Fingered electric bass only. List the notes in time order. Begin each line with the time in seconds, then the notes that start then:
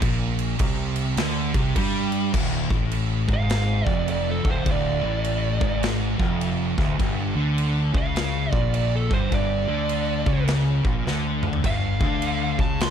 0.02 A#1
0.60 C2
1.17 D2
1.54 C2
1.76 G2
2.34 D1
2.70 A1
3.29 G#1
3.86 F1
4.45 D1
4.66 D1
5.03 A1
5.61 G#1
6.19 F1
6.78 D1
6.99 G1
7.35 D2
7.94 C#2
8.53 A#1
9.11 G1
9.32 G1
9.68 D2
10.26 C#2
10.84 A#1
11.05 D2
11.64 G1
12.01 D2
12.59 C#2